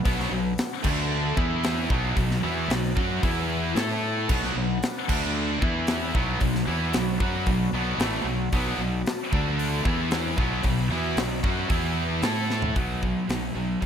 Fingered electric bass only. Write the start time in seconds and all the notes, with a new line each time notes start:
0.05 B1
0.31 B1
0.84 D2
1.37 E2
1.90 B1
2.16 B1
2.42 E2
2.68 B1
2.97 F#2
3.23 E2
3.75 A2
4.30 B1
4.55 B1
5.09 D2
5.62 E2
6.15 B1
6.41 B1
6.68 E2
6.95 B1
7.20 F#2
7.47 B1
7.73 B1
7.98 A1
8.24 B1
8.52 B1
8.78 B1
9.33 D2
9.85 E2
10.38 B1
10.65 B1
10.89 E2
11.16 B1
11.44 F#2
11.70 E2
12.23 A2
12.76 B1
13.28 B1
13.55 B1
13.82 F#2